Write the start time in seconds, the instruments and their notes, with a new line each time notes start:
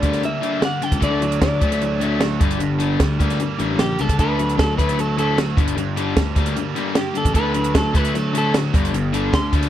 Already playing: overdriven electric guitar G2 D3 G3, clean electric guitar D5
0.02 picked electric bass D2, overdriven electric guitar G2 D3 G3 A#3, kick, closed hi-hat
0.13 snare, closed hi-hat
0.22 overdriven electric guitar G2 D3 G3, clean electric guitar E5, closed hi-hat
0.41 overdriven electric guitar G2 D3 G3 A#3, closed hi-hat
0.61 overdriven electric guitar G2 D3 G4, clean electric guitar F#5, snare, closed hi-hat
0.82 overdriven electric guitar G2 D3 D4, clean electric guitar G5, closed hi-hat
0.92 picked electric bass C#2, kick, closed hi-hat
1.00 picked electric bass D2, overdriven electric guitar D3 F#3 A3, clean electric guitar D5, kick, closed hi-hat
1.20 overdriven electric guitar D3 F#3, closed hi-hat
1.32 closed hi-hat
1.41 picked electric bass D2, overdriven electric guitar D3 F#3, clean electric guitar D5, kick, snare, closed hi-hat
1.60 picked electric bass D2, overdriven electric guitar D3 F#3 A3, kick, closed hi-hat
1.72 snare, closed hi-hat
1.80 overdriven electric guitar D3 F#3, closed hi-hat
2.00 overdriven electric guitar D3 F#3 A3, closed hi-hat
2.20 overdriven electric guitar D3 F#3 F#4, snare, closed hi-hat
2.40 picked electric bass G1, overdriven electric guitar G2 D3 G3, kick, closed hi-hat
2.51 closed hi-hat
2.59 picked electric bass G1, overdriven electric guitar G2 D3, closed hi-hat
2.79 overdriven electric guitar G2 D3 G3, closed hi-hat
2.99 picked electric bass D2, overdriven electric guitar G2 D3 G3, kick, snare, closed hi-hat
3.19 picked electric bass D2, overdriven electric guitar G2 D3 G3 A#3, kick, closed hi-hat
3.30 snare, closed hi-hat
3.40 overdriven electric guitar G2 D3 G3, closed hi-hat
3.59 picked electric bass A1, overdriven electric guitar G2 D3 G3 A#3, closed hi-hat
3.79 picked electric bass A#1, overdriven electric guitar G2 D3 G4, clean electric guitar G4, snare, closed hi-hat
3.99 picked electric bass C#2, overdriven electric guitar G2 D3 D4, clean electric guitar A4, closed hi-hat
4.09 kick, closed hi-hat
4.19 picked electric bass D2, overdriven electric guitar D3 F#3 A3, clean electric guitar B4, kick, closed hi-hat
4.38 overdriven electric guitar D3 F#3, closed hi-hat
4.49 closed hi-hat
4.58 picked electric bass D2, overdriven electric guitar D3 F#3, clean electric guitar A4, kick, snare, closed hi-hat
4.78 picked electric bass D2, overdriven electric guitar D3 F#3 A3, clean electric guitar B4, kick, closed hi-hat
4.89 snare, closed hi-hat
4.97 overdriven electric guitar D3 F#3, clean electric guitar A4, closed hi-hat
5.17 overdriven electric guitar D3 F#3 A3, clean electric guitar A4, closed hi-hat
5.38 overdriven electric guitar D3 F#3 F#4, snare, closed hi-hat
5.57 picked electric bass G1, overdriven electric guitar G2 D3 G3, kick, closed hi-hat
5.68 closed hi-hat
5.77 picked electric bass G1, overdriven electric guitar G2 D3, closed hi-hat
5.96 overdriven electric guitar G2 D3 G3, closed hi-hat
6.16 picked electric bass D2, overdriven electric guitar G2 D3 G3, kick, snare, closed hi-hat
6.35 picked electric bass D2, overdriven electric guitar G2 D3 G3 A#3, kick, closed hi-hat
6.46 closed hi-hat
6.55 overdriven electric guitar G2 D3 G3, closed hi-hat
6.75 overdriven electric guitar G2 D3 G3 A#3, closed hi-hat
6.95 overdriven electric guitar G2 D3 G4, clean electric guitar G4, snare, closed hi-hat
7.14 overdriven electric guitar G2 D3 D4, clean electric guitar A4, closed hi-hat
7.25 picked electric bass A1, kick, closed hi-hat
7.34 picked electric bass D2, overdriven electric guitar D3 F#3 A3, clean electric guitar B4, kick, closed hi-hat
7.54 overdriven electric guitar D3 F#3, closed hi-hat
7.64 closed hi-hat
7.74 picked electric bass D2, overdriven electric guitar D3 F#3, clean electric guitar A4, kick, snare, closed hi-hat
7.93 picked electric bass D2, overdriven electric guitar D3 F#3 A3, clean electric guitar B4, kick, closed hi-hat
8.05 closed hi-hat
8.14 overdriven electric guitar D3 F#3, clean electric guitar A4, closed hi-hat
8.33 overdriven electric guitar D3 F#3 A3, closed hi-hat
8.38 clean electric guitar A4
8.53 overdriven electric guitar D3 F#3 F#4, snare, closed hi-hat
8.73 picked electric bass G1, overdriven electric guitar G2 D3 G3, kick, closed hi-hat
8.85 closed hi-hat
8.93 picked electric bass G1, overdriven electric guitar G2 D3, closed hi-hat
9.13 overdriven electric guitar G2 D3 G3, closed hi-hat
9.33 picked electric bass D2, overdriven electric guitar G2 D3 G3, clean electric guitar C6, kick, snare, closed hi-hat
9.52 picked electric bass D2, overdriven electric guitar G2 D3 G3 A#3, kick, closed hi-hat
9.63 closed hi-hat